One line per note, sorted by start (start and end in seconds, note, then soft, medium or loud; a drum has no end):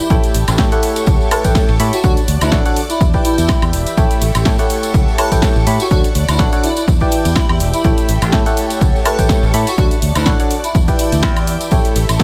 0.00 0.16 E4 medium
0.00 2.04 G4 medium
0.00 0.10 D5 medium
0.00 2.44 E5 medium
0.00 0.88 B5 medium
0.10 0.21 A1 loud
0.10 0.36 A3 medium
0.10 0.36 E4 medium
0.10 2.02 G4 medium
0.10 0.36 G4 medium
0.10 2.02 A4 medium
0.10 0.36 A4 medium
0.10 0.36 C#5 medium
0.10 0.36 G5 medium
0.10 2.98 C#6 loud
0.10 kick loud
0.10 tambourine medium
0.10 shaker soft
0.24 closed hi-hat medium
0.24 tambourine soft
0.24 shaker soft
0.34 0.45 A1 medium
0.34 2.04 C#5 medium
0.34 open hi-hat loud
0.34 shaker medium
0.48 0.56 A1 loud
0.48 closed hi-hat medium
0.48 tambourine medium
0.48 high woodblock medium
0.48 shaker soft
0.54 3.40 A5 medium
0.54 snare loud
0.54 tambourine medium
0.59 0.69 A2 medium
0.59 0.69 A3 medium
0.59 0.69 E4 medium
0.59 0.69 G4 medium
0.59 0.69 A4 medium
0.59 0.69 C#5 medium
0.59 0.69 G5 medium
0.59 kick loud
0.59 shaker soft
0.72 1.29 A3 medium
0.72 1.29 E4 medium
0.72 1.29 G4 medium
0.72 1.29 A4 medium
0.72 1.29 C#5 medium
0.72 1.29 F#5 medium
0.72 closed hi-hat medium
0.72 tambourine soft
0.72 shaker soft
0.83 open hi-hat loud
0.83 shaker medium
0.96 closed hi-hat medium
0.96 tambourine medium
0.96 shaker soft
1.06 1.17 C#2 medium
1.06 kick loud
1.06 tambourine medium
1.06 shaker soft
1.21 tambourine soft
1.31 1.43 A3 medium
1.31 1.43 E4 medium
1.31 1.43 G4 medium
1.31 1.43 A4 medium
1.31 1.45 B4 medium
1.31 1.43 C#5 medium
1.31 1.43 A5 medium
1.31 open hi-hat loud
1.31 high woodblock medium
1.31 shaker medium
1.44 1.53 A1 medium
1.44 1.70 A3 medium
1.44 1.70 E4 medium
1.44 1.70 G4 medium
1.44 1.70 A4 medium
1.44 1.70 C#5 medium
1.44 1.70 G5 medium
1.44 kick medium
1.44 closed hi-hat medium
1.44 tambourine medium
1.44 shaker soft
1.55 kick loud
1.55 snare loud
1.55 tambourine medium
1.55 shaker soft
1.68 1.77 A1 loud
1.68 tambourine soft
1.80 1.90 A2 loud
1.80 1.97 E4 medium
1.80 1.97 G4 medium
1.80 1.97 A4 medium
1.80 1.97 C#5 medium
1.80 1.97 B5 medium
1.80 open hi-hat loud
1.80 shaker medium
1.93 2.00 F#4 medium
1.93 closed hi-hat medium
1.93 tambourine medium
1.93 shaker soft
2.03 2.14 D2 loud
2.03 2.21 D3 medium
2.03 2.21 D4 medium
2.03 2.12 F#4 medium
2.03 3.01 F#4 medium
2.03 2.21 F#4 medium
2.03 2.21 A4 medium
2.03 2.21 C#5 medium
2.03 3.00 D5 medium
2.03 2.21 F#5 medium
2.03 3.00 F#6 medium
2.03 kick loud
2.03 tambourine medium
2.03 shaker soft
2.17 closed hi-hat soft
2.17 tambourine soft
2.17 shaker soft
2.28 2.38 D2 medium
2.28 open hi-hat loud
2.28 shaker medium
2.34 3.97 D5 medium
2.41 2.50 D2 loud
2.41 2.53 E4 medium
2.41 closed hi-hat medium
2.41 tambourine medium
2.41 high woodblock medium
2.41 shaker soft
2.52 2.62 A1 medium
2.52 2.64 D3 loud
2.52 2.64 D4 medium
2.52 2.64 F#4 medium
2.52 2.64 A4 medium
2.52 2.64 C#5 medium
2.52 2.64 F#5 loud
2.52 kick loud
2.52 snare loud
2.52 tambourine medium
2.52 shaker soft
2.65 2.81 D3 medium
2.65 2.81 D4 medium
2.65 2.81 F#4 medium
2.65 2.81 A4 medium
2.65 2.81 C#5 medium
2.65 2.81 F#5 medium
2.65 closed hi-hat medium
2.65 tambourine soft
2.65 shaker soft
2.76 open hi-hat loud
2.76 shaker medium
2.90 3.01 E4 medium
2.90 closed hi-hat medium
2.90 tambourine medium
2.90 shaker soft
3.01 3.11 E2 medium
3.01 5.91 G4 medium
3.01 3.97 E5 medium
3.01 3.96 D6 medium
3.01 3.96 G6 medium
3.01 kick loud
3.01 tambourine medium
3.01 shaker soft
3.13 3.95 E3 medium
3.13 3.95 E4 medium
3.13 3.95 G4 medium
3.13 3.95 B4 medium
3.13 3.95 D5 medium
3.13 3.95 G5 medium
3.13 kick medium
3.13 tambourine soft
3.25 3.62 E4 loud
3.25 open hi-hat loud
3.25 shaker medium
3.29 4.75 B5 medium
3.38 3.46 E2 medium
3.38 closed hi-hat medium
3.38 tambourine medium
3.38 shaker soft
3.45 6.31 E5 medium
3.45 snare loud
3.49 kick loud
3.49 tambourine medium
3.49 high woodblock medium
3.49 shaker soft
3.62 3.71 E2 loud
3.62 closed hi-hat soft
3.62 tambourine soft
3.62 high woodblock medium
3.73 3.83 E1 medium
3.73 open hi-hat loud
3.73 shaker medium
3.87 closed hi-hat medium
3.87 tambourine medium
3.87 shaker soft
3.97 4.08 A1 loud
3.97 4.23 A3 medium
3.97 4.23 E4 medium
3.97 5.89 G4 medium
3.97 4.23 G4 medium
3.97 5.89 A4 medium
3.97 4.23 A4 medium
3.97 4.23 C#5 medium
3.97 4.23 G5 medium
3.97 6.85 C#6 loud
3.97 kick loud
3.97 tambourine medium
3.97 shaker soft
4.10 5.91 C#5 medium
4.10 closed hi-hat soft
4.10 tambourine soft
4.10 shaker soft
4.22 4.32 A1 medium
4.22 open hi-hat loud
4.22 shaker medium
4.35 4.43 A1 loud
4.35 closed hi-hat medium
4.35 tambourine medium
4.35 high woodblock medium
4.35 shaker soft
4.45 4.56 A2 medium
4.45 4.56 A3 medium
4.45 4.56 E4 medium
4.45 4.56 G4 medium
4.45 4.56 A4 medium
4.45 4.56 C#5 medium
4.45 4.56 G5 medium
4.45 7.27 A5 medium
4.45 kick loud
4.45 snare loud
4.45 tambourine medium
4.45 shaker soft
4.58 5.16 A3 medium
4.58 5.16 E4 medium
4.58 5.16 G4 medium
4.58 5.16 A4 medium
4.58 5.16 C#5 medium
4.58 5.16 F#5 medium
4.58 closed hi-hat medium
4.58 tambourine soft
4.58 shaker soft
4.70 open hi-hat loud
4.70 shaker medium
4.83 closed hi-hat medium
4.83 tambourine medium
4.83 shaker soft
4.94 5.04 C#2 medium
4.94 kick loud
4.94 tambourine medium
4.94 shaker soft
5.08 tambourine soft
5.18 5.30 A3 medium
5.18 5.30 E4 medium
5.18 5.30 G4 medium
5.18 5.30 A4 medium
5.18 5.32 B4 medium
5.18 5.30 C#5 medium
5.18 5.30 A5 medium
5.18 open hi-hat loud
5.18 high woodblock medium
5.18 shaker medium
5.32 5.40 A1 medium
5.32 5.57 A3 medium
5.32 5.57 E4 medium
5.32 5.57 G4 medium
5.32 5.57 A4 medium
5.32 5.57 C#5 medium
5.32 5.57 G5 medium
5.32 kick medium
5.32 closed hi-hat medium
5.32 tambourine medium
5.32 shaker soft
5.42 kick loud
5.42 snare loud
5.42 tambourine medium
5.42 shaker soft
5.56 5.64 A1 loud
5.56 tambourine soft
5.67 5.77 A2 loud
5.67 5.84 E4 medium
5.67 5.84 G4 medium
5.67 5.84 A4 medium
5.67 5.84 C#5 medium
5.67 5.84 B5 medium
5.67 open hi-hat loud
5.67 shaker medium
5.80 5.87 F#4 medium
5.80 closed hi-hat medium
5.80 tambourine medium
5.80 shaker soft
5.91 6.01 D2 loud
5.91 6.08 D3 medium
5.91 6.08 D4 medium
5.91 6.88 F#4 medium
5.91 5.99 F#4 medium
5.91 6.08 F#4 medium
5.91 6.08 A4 medium
5.91 6.08 C#5 medium
5.91 6.87 D5 medium
5.91 6.08 F#5 medium
5.91 6.87 F#6 medium
5.91 kick loud
5.91 tambourine medium
5.91 shaker soft
5.99 7.84 D5 medium
6.04 closed hi-hat medium
6.04 tambourine soft
6.04 shaker soft
6.15 6.25 D2 medium
6.15 open hi-hat loud
6.15 shaker medium
6.28 6.37 D2 loud
6.28 6.40 E4 medium
6.28 closed hi-hat medium
6.28 tambourine medium
6.28 high woodblock medium
6.28 shaker soft
6.39 6.50 A1 medium
6.39 6.51 D3 loud
6.39 6.51 D4 medium
6.39 6.51 F#4 medium
6.39 6.51 A4 medium
6.39 6.51 C#5 medium
6.39 6.51 F#5 loud
6.39 kick loud
6.39 snare loud
6.39 tambourine medium
6.39 shaker soft
6.52 6.68 D3 medium
6.52 6.68 D4 medium
6.52 6.68 F#4 medium
6.52 6.68 A4 medium
6.52 6.68 C#5 medium
6.52 6.68 F#5 medium
6.52 closed hi-hat medium
6.52 tambourine soft
6.52 shaker soft
6.64 6.72 E4 medium
6.64 open hi-hat loud
6.64 shaker medium
6.76 6.84 E4 medium
6.76 closed hi-hat medium
6.76 tambourine medium
6.76 shaker soft
6.88 6.98 E2 medium
6.88 9.78 G4 medium
6.88 7.83 E5 medium
6.88 7.83 D6 medium
6.88 7.83 G6 medium
6.88 kick loud
6.88 tambourine medium
6.88 shaker soft
7.00 7.82 E3 medium
7.00 7.82 E4 medium
7.00 7.82 G4 medium
7.00 7.82 B4 medium
7.00 7.82 D5 medium
7.00 7.82 G5 medium
7.00 kick medium
7.00 tambourine soft
7.12 open hi-hat loud
7.12 shaker medium
7.25 7.34 E2 medium
7.25 closed hi-hat medium
7.25 tambourine medium
7.25 shaker soft
7.32 10.18 E5 medium
7.32 8.62 B5 medium
7.32 snare loud
7.36 7.45 E4 medium
7.36 kick loud
7.36 tambourine medium
7.36 high woodblock medium
7.36 shaker soft
7.49 7.58 E2 loud
7.49 7.56 E4 medium
7.49 tambourine soft
7.49 high woodblock medium
7.60 7.71 E1 loud
7.60 open hi-hat loud
7.60 shaker medium
7.73 7.90 E4 loud
7.73 closed hi-hat medium
7.73 tambourine medium
7.73 shaker soft
7.84 7.95 A1 loud
7.84 8.10 A3 medium
7.84 8.10 E4 medium
7.84 8.10 G4 medium
7.84 9.76 G4 medium
7.84 8.10 A4 medium
7.84 9.76 A4 medium
7.84 8.10 C#5 medium
7.84 8.10 G5 medium
7.84 10.72 C#6 loud
7.84 kick loud
7.84 tambourine medium
7.84 shaker soft
7.97 closed hi-hat medium
7.97 tambourine soft
7.97 shaker soft
8.09 8.19 A1 medium
8.09 open hi-hat loud
8.09 shaker medium
8.15 9.78 C#5 medium
8.22 8.30 A1 loud
8.22 closed hi-hat medium
8.22 tambourine medium
8.22 high woodblock medium
8.22 shaker soft
8.28 11.14 A5 medium
8.28 snare loud
8.33 8.43 A2 medium
8.33 8.43 A3 medium
8.33 8.43 E4 medium
8.33 8.43 G4 medium
8.33 8.43 A4 medium
8.33 8.43 C#5 medium
8.33 8.43 G5 medium
8.33 kick loud
8.33 tambourine medium
8.33 shaker soft
8.46 9.03 A3 medium
8.46 9.03 E4 medium
8.46 9.03 G4 medium
8.46 9.03 A4 medium
8.46 9.03 C#5 medium
8.46 9.03 F#5 medium
8.46 closed hi-hat medium
8.46 tambourine soft
8.46 shaker soft
8.57 open hi-hat medium
8.57 shaker medium
8.70 closed hi-hat medium
8.70 tambourine medium
8.70 shaker soft
8.81 8.91 C#2 medium
8.81 kick loud
8.81 tambourine medium
8.81 shaker soft
8.96 tambourine soft
9.05 9.17 A3 medium
9.05 9.17 E4 medium
9.05 9.17 G4 medium
9.05 9.17 A4 medium
9.05 9.19 B4 medium
9.05 9.17 C#5 medium
9.05 9.17 A5 medium
9.05 open hi-hat loud
9.05 high woodblock medium
9.05 shaker medium
9.19 9.27 A1 medium
9.19 9.44 A3 medium
9.19 9.44 E4 medium
9.19 9.44 G4 medium
9.19 9.44 A4 medium
9.19 9.44 C#5 medium
9.19 9.44 G5 medium
9.19 kick medium
9.19 closed hi-hat medium
9.19 tambourine medium
9.19 shaker soft
9.29 kick loud
9.29 snare loud
9.29 tambourine medium
9.29 shaker soft
9.43 9.51 A1 loud
9.43 tambourine soft
9.54 9.64 A2 medium
9.54 9.71 E4 medium
9.54 9.71 G4 medium
9.54 9.71 A4 medium
9.54 9.71 C#5 medium
9.54 9.71 B5 medium
9.54 open hi-hat loud
9.54 shaker medium
9.67 9.74 F#4 medium
9.67 closed hi-hat medium
9.67 tambourine medium
9.67 shaker soft
9.78 9.88 D2 loud
9.78 9.95 D3 medium
9.78 9.95 D4 medium
9.78 9.95 F#4 medium
9.78 9.87 F#4 medium
9.78 10.75 F#4 medium
9.78 9.95 A4 medium
9.78 9.95 C#5 medium
9.78 10.74 D5 medium
9.78 9.95 F#5 medium
9.78 10.74 F#6 medium
9.78 kick loud
9.78 tambourine medium
9.78 shaker soft
9.91 closed hi-hat medium
9.91 tambourine soft
9.91 shaker soft
10.02 10.12 D2 medium
10.02 open hi-hat loud
10.02 shaker medium
10.15 10.24 D2 loud
10.15 10.27 E4 medium
10.15 closed hi-hat medium
10.15 tambourine medium
10.15 high woodblock medium
10.15 shaker soft
10.22 11.72 D5 medium
10.22 snare loud
10.22 tambourine medium
10.26 10.37 A1 medium
10.26 10.38 D3 loud
10.26 10.38 D4 medium
10.26 10.38 F#4 medium
10.26 10.38 A4 medium
10.26 10.38 C#5 medium
10.26 10.38 F#5 loud
10.26 kick loud
10.26 shaker soft
10.40 10.55 D3 medium
10.40 10.55 D4 medium
10.40 10.55 F#4 medium
10.40 10.55 A4 medium
10.40 10.55 C#5 medium
10.40 10.55 F#5 medium
10.40 closed hi-hat medium
10.40 tambourine soft
10.40 shaker soft
10.51 open hi-hat loud
10.51 shaker medium
10.64 10.75 E4 loud
10.64 closed hi-hat medium
10.64 tambourine medium
10.64 shaker soft
10.75 10.85 E2 medium
10.75 12.23 G4 medium
10.75 11.71 E5 medium
10.75 11.71 D6 medium
10.75 11.71 G6 medium
10.75 kick loud
10.75 tambourine medium
10.75 shaker soft
10.88 11.69 E3 medium
10.88 11.69 E4 medium
10.88 11.69 G4 medium
10.88 11.69 B4 medium
10.88 11.69 D5 medium
10.88 11.69 G5 medium
10.88 kick medium
10.88 closed hi-hat soft
10.88 tambourine soft
10.88 shaker soft
10.99 11.36 E4 medium
10.99 open hi-hat loud
10.99 shaker medium
11.12 11.23 D2 medium
11.12 closed hi-hat medium
11.12 tambourine medium
11.12 shaker soft
11.18 12.23 E5 medium
11.18 12.23 B5 medium
11.22 11.56 E2 loud
11.22 kick loud
11.22 snare loud
11.22 tambourine medium
11.22 high woodblock medium
11.22 shaker soft
11.36 closed hi-hat soft
11.36 tambourine soft
11.36 high woodblock medium
11.36 shaker soft
11.47 open hi-hat loud
11.47 shaker medium
11.61 closed hi-hat medium
11.61 tambourine medium
11.61 shaker soft
11.71 11.82 A1 loud
11.71 11.97 A3 medium
11.71 11.97 E4 medium
11.71 11.97 G4 medium
11.71 12.23 G4 medium
11.71 11.97 A4 medium
11.71 12.23 A4 medium
11.71 11.97 C#5 medium
11.71 11.97 G5 medium
11.71 12.23 C#6 loud
11.71 kick loud
11.71 ride medium
11.71 tambourine medium
11.71 shaker soft
11.85 closed hi-hat medium
11.85 tambourine soft
11.85 shaker soft
11.94 12.06 A1 medium
11.94 12.23 C#5 medium
11.94 open hi-hat loud
11.94 ride medium
11.94 shaker medium
12.06 12.17 A1 loud
12.06 12.23 A5 medium
12.06 closed hi-hat medium
12.06 tambourine medium
12.06 high woodblock medium
12.06 shaker soft
12.19 12.23 A2 medium
12.19 12.23 A3 medium
12.19 12.23 E4 medium
12.19 12.23 G4 medium
12.19 12.23 A4 medium
12.19 12.23 C#5 medium
12.19 12.23 G5 medium
12.19 kick loud
12.19 snare loud
12.19 ride medium
12.19 tambourine medium
12.19 shaker soft